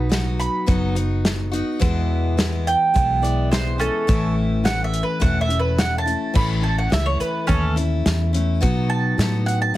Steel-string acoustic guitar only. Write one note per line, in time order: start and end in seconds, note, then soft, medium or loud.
0.00 0.10 D#4 medium
0.00 0.11 F#4 medium
0.09 0.66 F#3 medium
0.09 0.67 B3 medium
0.09 0.66 D#4 medium
0.09 0.66 F#4 medium
0.66 0.95 B2 medium
0.66 0.96 F#3 medium
0.66 0.96 B3 medium
0.66 0.95 D#4 medium
0.66 0.94 F#4 medium
0.95 1.52 B3 soft
0.95 1.51 D#4 soft
0.95 1.50 F#4 soft
1.52 1.80 B3 medium
1.52 1.81 D#4 medium
1.52 1.81 F#4 medium
1.79 2.37 E2 medium
1.79 2.37 B2 medium
1.79 2.37 E3 medium
1.79 2.37 G#3 medium
1.79 2.38 B3 medium
1.79 2.39 E4 loud
2.37 2.94 E3 medium
2.37 2.93 G#3 medium
2.37 2.94 B3 medium
2.37 2.95 E4 medium
2.94 3.23 E2 medium
2.94 3.23 B2 medium
2.94 3.23 E3 medium
2.94 3.22 G#3 medium
2.94 3.22 B3 medium
2.94 3.20 E4 medium
3.22 3.81 E3 soft
3.22 3.79 G#3 medium
3.22 3.78 B3 medium
3.22 3.78 E4 soft
3.78 4.07 E3 soft
3.78 4.08 G#3 soft
3.78 4.08 B3 medium
3.78 4.07 E4 medium
4.07 4.64 A2 medium
4.07 4.62 E3 medium
4.07 4.64 A3 medium
4.07 4.65 C#4 medium
4.07 4.65 E4 medium
4.64 5.19 E3 medium
4.64 5.20 A3 medium
4.64 5.20 C#4 medium
4.64 5.20 E4 medium
5.20 5.49 A2 medium
5.20 5.49 E3 medium
5.20 5.50 A3 medium
5.20 5.49 C#4 medium
5.20 5.48 E4 medium
5.49 6.06 A3 soft
5.49 6.06 C#4 medium
5.49 6.04 E4 medium
6.06 6.34 A3 soft
6.06 6.34 C#4 medium
6.06 6.34 E4 medium
6.34 6.63 A2 medium
6.34 6.63 E3 medium
6.34 6.63 A3 medium
6.34 6.62 C#4 medium
6.34 6.60 E4 medium
6.62 6.90 A3 soft
6.62 6.91 C#4 soft
6.62 6.91 E4 soft
6.90 7.47 E3 medium
6.90 7.47 A3 medium
6.90 7.47 C#4 medium
6.90 7.47 E4 medium
7.47 7.76 A2 medium
7.47 7.76 E3 medium
7.47 7.77 A3 medium
7.47 7.76 C#4 medium
7.47 7.75 E4 medium
7.76 8.34 A3 soft
7.76 8.33 C#4 medium
7.76 8.32 E4 medium
8.33 8.61 A3 soft
8.33 8.62 C#4 medium
8.33 8.62 E4 medium
8.61 9.18 B2 medium
8.61 9.16 F#3 medium
8.61 9.18 B3 medium
8.61 9.18 D#4 loud
8.61 9.19 F#4 loud
9.18 9.73 F#3 medium
9.18 9.74 B3 medium
9.18 9.74 D#4 medium
9.18 9.74 F#4 medium
9.74 9.77 B2 medium
9.74 9.77 F#3 medium